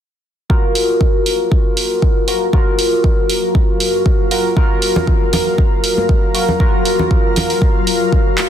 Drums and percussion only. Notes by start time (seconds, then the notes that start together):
0.50 kick
0.75 open hi-hat
1.01 kick
1.26 open hi-hat
1.52 kick
1.77 open hi-hat
2.02 kick
2.28 open hi-hat
2.53 kick
2.79 open hi-hat
3.04 kick
3.30 open hi-hat
3.55 kick
3.80 open hi-hat
4.06 kick
4.31 open hi-hat
4.57 kick
4.82 open hi-hat
4.96 low conga
5.07 kick
5.33 open hi-hat, low conga
5.58 kick
5.84 open hi-hat
5.98 high conga
6.09 kick
6.35 open hi-hat
6.48 low conga
6.60 kick
6.85 open hi-hat
6.99 low conga
7.11 kick
7.36 open hi-hat, low conga
7.50 open hi-hat
7.62 kick
7.87 open hi-hat
8.12 kick
8.38 clap, open hi-hat